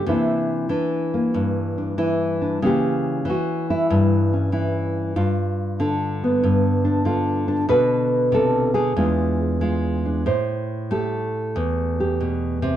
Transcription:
0.06 0.71 C3 medium
0.06 0.69 E3 medium
0.06 1.13 A#3 medium
0.06 0.69 D4 medium
0.06 1.97 E4 medium
0.69 1.97 E3 medium
0.69 1.77 D4 medium
1.14 2.61 A#3 medium
1.34 2.60 G2 medium
1.78 2.40 D4 medium
1.98 2.60 E3 medium
1.98 2.63 E4 medium
2.42 2.60 D4 medium
2.62 3.27 C#3 medium
2.62 3.24 E3 soft
2.62 5.15 A#3 medium
2.62 4.32 C#4 medium
2.62 3.28 G4 medium
3.25 4.51 E3 medium
3.30 3.70 F#4 medium
3.70 4.33 E4 medium
3.90 5.14 G2 medium
4.33 5.15 C#4 soft
4.52 5.14 E3 medium
4.52 5.16 E4 soft
5.16 6.42 G2 medium
5.16 7.05 F4 medium
5.80 7.04 D3 medium
5.80 6.84 D4 medium
6.24 7.67 B3 medium
6.43 7.66 G2 medium
6.85 7.47 D4 medium
7.05 7.68 D3 medium
7.05 7.66 F4 medium
7.48 7.66 D4 medium
7.69 8.93 B2 medium
7.69 8.73 D3 medium
7.69 8.94 D4 medium
7.69 8.95 F#4 soft
7.69 8.32 B4 medium
8.32 8.75 C3 medium
8.32 8.74 A4 medium
8.74 8.96 D3 medium
8.74 9.39 G#4 medium
8.96 10.26 E2 medium
8.96 9.60 G#3 soft
8.96 10.04 D4 soft
8.96 9.61 F4 soft
9.61 10.24 G#3 medium
9.61 10.24 F4 soft
10.05 10.24 D4 soft
10.26 11.55 A2 medium
10.26 12.77 C5 medium
10.91 12.77 A3 medium
10.91 11.99 G4 medium
11.56 12.77 E2 medium
12.00 12.77 G4 medium
12.21 12.62 B2 medium
12.62 12.77 C3 medium

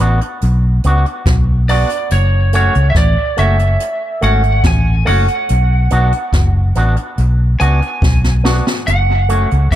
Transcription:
0.00 0.19 A1 medium
0.00 0.19 B3 medium
0.00 0.19 D4 medium
0.00 0.20 F#4 medium
0.21 muted clean electric guitar stroke soft
0.21 closed hi-hat medium
0.41 0.80 B1 loud
0.41 closed hi-hat medium
0.84 1.03 C#2 medium
0.84 1.04 B3 medium
0.84 1.05 D4 medium
0.84 1.05 F#4 medium
0.84 closed hi-hat medium
1.06 muted clean electric guitar stroke soft
1.06 closed hi-hat soft
1.26 1.83 B1 loud
1.26 kick loud
1.26 snare loud
1.26 closed hi-hat loud
1.69 1.88 B3 medium
1.69 1.89 D4 medium
1.69 1.89 F#4 loud
1.69 2.08 D5 medium
1.69 open hi-hat medium
1.90 closed hi-hat soft
2.10 2.68 F#1 loud
2.10 2.51 C#5 medium
2.10 closed hi-hat loud
2.53 2.73 A3 medium
2.53 2.73 C#4 medium
2.53 2.74 F#4 loud
2.53 2.90 C#5 medium
2.53 closed hi-hat medium
2.75 2.94 C#2 loud
2.75 closed hi-hat medium
2.90 2.96 E5 medium
2.95 3.15 A1 medium
2.95 3.39 D5 medium
2.95 kick loud
2.95 snare medium
2.95 closed hi-hat medium
3.37 3.76 F#1 medium
3.37 3.57 A3 medium
3.37 3.57 C#4 medium
3.37 3.58 F#4 medium
3.37 4.25 E5 loud
3.37 closed hi-hat medium
3.59 muted clean electric guitar stroke medium
3.59 closed hi-hat medium
3.80 closed hi-hat medium
4.21 4.60 G#1 medium
4.21 4.41 A3 loud
4.21 4.42 C#4 loud
4.21 4.42 F#4 medium
4.21 4.66 F#5 medium
4.21 closed hi-hat medium
4.44 muted clean electric guitar stroke soft
4.44 closed hi-hat soft
4.64 5.02 A1 medium
4.64 5.07 G#5 loud
4.64 kick loud
4.64 snare loud
4.64 closed hi-hat loud
5.05 5.27 F#1 medium
5.05 5.26 A3 medium
5.05 5.26 C#4 loud
5.05 5.27 F#4 loud
5.05 6.30 F#5 loud
5.05 open hi-hat medium
5.28 closed hi-hat soft
5.49 5.87 B1 loud
5.49 closed hi-hat medium
5.90 6.11 B1 medium
5.90 6.11 B3 medium
5.90 6.11 D4 medium
5.90 6.12 F#4 loud
5.90 closed hi-hat medium
6.12 closed hi-hat medium
6.33 6.71 F#1 loud
6.33 kick medium
6.33 snare loud
6.33 closed hi-hat medium
6.75 6.95 A1 medium
6.75 6.95 B3 medium
6.75 6.96 D4 medium
6.75 6.96 F#4 medium
6.75 closed hi-hat medium
6.96 muted clean electric guitar stroke soft
6.96 closed hi-hat medium
7.18 7.56 B1 loud
7.18 closed hi-hat medium
7.60 7.80 C#2 medium
7.60 7.80 B3 medium
7.60 7.80 D4 medium
7.60 7.80 F#4 loud
7.60 8.83 G#5 loud
7.60 closed hi-hat medium
7.81 muted clean electric guitar stroke soft
7.81 closed hi-hat soft
8.02 8.60 B1 loud
8.02 kick loud
8.02 snare medium
8.24 snare medium
8.44 8.64 B3 medium
8.44 8.64 D4 medium
8.44 8.65 F#4 medium
8.44 snare loud
8.67 snare loud
8.87 9.45 F#1 medium
8.87 9.74 F#5 medium
8.87 closed hi-hat loud
9.29 9.49 A3 medium
9.29 9.49 C#4 medium
9.29 9.49 F#4 loud
9.29 closed hi-hat medium
9.51 9.70 C#2 medium
9.51 closed hi-hat soft
9.71 9.76 A1 medium
9.71 9.76 E5 medium
9.71 kick medium
9.71 cross-stick loud
9.71 closed hi-hat loud

